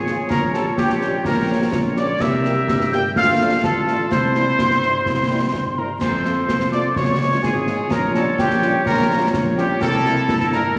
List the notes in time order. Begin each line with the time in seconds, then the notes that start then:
Already playing: G#1 F4 G#4 C#5 G#5
0.06 F3 F4 G#4, snare
0.29 A#1 F4 A#4 C#5 A#5, concert bass drum, snare
0.54 G3 C#4 G4 A4 A5, snare
0.77 A#1 G4 G5, concert bass drum, snare
0.90 snare
1.01 G3 C#4 G4, snare
1.25 A#1 A#4 A#5, concert bass drum, snare
1.49 G3 C#4 G4
1.72 A#1, concert bass drum, snare
1.96 G3 C#4 G4 D5 D6, snare
2.20 C2 G4 A#4 E5 E6, concert bass drum, snare, crash
2.44 G3 A#3 G4, snare
2.68 G1, concert bass drum, snare
2.80 snare
2.92 G3 A#3 G4 G5 G6, snare
3.15 D2 F4 A4 F5 F6, concert bass drum, snare
3.40 F3 A3 D4
3.63 A1 A4 A5, concert bass drum, snare
3.87 F3 A3 D4, snare
4.11 C2 E4 C5 C6, concert bass drum, snare
4.35 G3 C4 E4, snare
4.59 G1, concert bass drum, snare
4.71 snare
4.82 G3 C4 E4, snare
5.06 C2, concert bass drum, snare
5.30 G3 C4 E4
5.54 G1, concert bass drum, snare
5.77 G3 C4 E4 A#4 A#5
6.01 F2 F4 A4 C5 C6, concert bass drum, snare, crash
6.24 F3 A3 F4, snare
6.49 C2, concert bass drum, snare
6.60 snare
6.72 F3 A3 F4 D5 D6, snare
6.96 C#2 C#5 C#6, concert bass drum, snare
7.20 G#3 C#4 F4
7.42 G#1 G#4 G#5, concert bass drum, snare
7.67 G#3 C#4 F4, snare
7.91 A#1 F4 A#4 C#5 A#5, concert bass drum, snare
8.14 G3 C#4 F4 A4 A5, snare
8.38 A#1 G4 G5, concert bass drum, snare
8.50 snare
8.62 G3 C#4 F4, snare
8.86 A#1 A#4 A#5, concert bass drum, snare
9.10 G3 C#4 F4
9.33 A#1, concert bass drum, snare
9.57 G3 C#4 F4 G4 G5, snare
9.81 C2 E4 A4 A#4 A5, concert bass drum, snare, crash
10.05 G3 A#3 E4, snare
10.29 G1, concert bass drum, snare
10.40 snare
10.52 G3 A#3 E4 A#4 A#5, snare